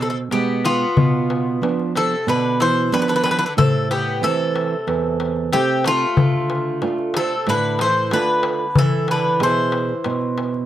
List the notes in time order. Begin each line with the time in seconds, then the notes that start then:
Already playing: B2
0.01 C4 A4
0.10 C4 A4
0.15 darbuka tek
0.31 B2 G#3 B3 G4, darbuka tek
0.48 darbuka tek
0.65 B3 F4, darbuka tek
0.81 darbuka tek
0.97 B2, darbuka dum
1.30 darbuka tek
1.61 F3 B3 D4, darbuka tek
1.79 darbuka tek
1.95 C3 A4, darbuka tek
2.27 B2 D3 B4, darbuka tek
2.60 E3 C5, darbuka tek
2.77 darbuka tek
2.92 D3 F3 B3 D4 B4, darbuka tek
2.99 D3 B4
3.08 D3 B4
3.16 D3 B4
3.23 D3 B4, darbuka tek
3.31 D3 B4
3.38 D3 B4
3.46 D3 B4
3.57 A2 C3 A4, darbuka dum
3.91 B3 G4, darbuka tek
4.21 C3 E3 A3 C4 A4, darbuka tek
4.40 darbuka tek
4.56 darbuka tek
4.87 E2, darbuka tek
5.20 darbuka tek
5.36 darbuka tek
5.52 C3 A3 C4 G4, darbuka tek
5.84 A3 F4, darbuka tek
6.17 D3, darbuka dum
6.50 darbuka tek
6.82 A3 D4 F4, darbuka tek
6.99 darbuka tek
7.14 C3 A4, darbuka tek
7.47 A2 D3 B4, darbuka tek
7.79 C5, darbuka tek
7.83 E3
7.95 darbuka tek
8.11 D3 A3 D4 F4 B4, darbuka tek
8.43 darbuka tek
8.75 E3 A4, darbuka dum
9.08 D3 B4, darbuka tek
9.24 darbuka tek
9.40 B2 E3 E4 G#4 C5, darbuka tek
9.57 darbuka tek
9.72 darbuka tek
9.89 darbuka tek
10.04 B2, darbuka tek
10.21 darbuka tek
10.38 darbuka tek
10.54 darbuka tek